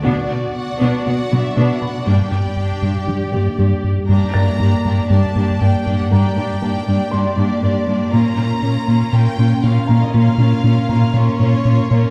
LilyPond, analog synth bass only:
\new Staff \with { instrumentName = "Analog synth bass" } { \clef bass \time 4/4 \key g \minor \tempo 4 = 119 b,8 b,8 b,8 b,8 b8 b,8 b,8 b,8 | g,8 g,8 g,8 g,8 g8 g,8 g,8 g,8 | g,8 g,8 g,8 g,8 g,8 g,8 g,8 g,8 | g,8 g,8 g,8 g,8 g,8 g,8 g,8 g,8 |
bes,8 bes,8 bes,8 bes,8 bes,8 bes,8 bes,8 bes,8 | bes,8 bes,8 bes,8 bes,8 bes,8 bes,8 bes,8 bes,8 | }